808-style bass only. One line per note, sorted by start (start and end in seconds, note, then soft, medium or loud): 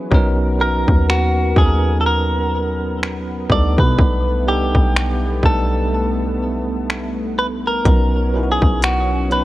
0.11 0.85 B1 loud
0.88 1.54 D#2 loud
1.56 3.46 D#2 loud
3.50 3.77 D2 loud
3.78 3.98 B2 loud
3.98 4.49 B1 loud
4.47 4.74 C2 loud
4.75 5.41 B1 loud
5.43 7.81 B1 loud
7.85 8.59 B1 loud
8.62 9.44 B1 loud